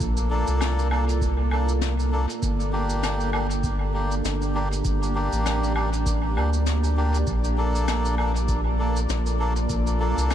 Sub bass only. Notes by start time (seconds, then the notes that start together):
0.00 A#1
0.48 C2
2.42 G1
4.24 G1
4.85 G1
5.32 A1
6.36 D2
7.27 A#1
9.09 A#1
9.70 A#1
10.17 C2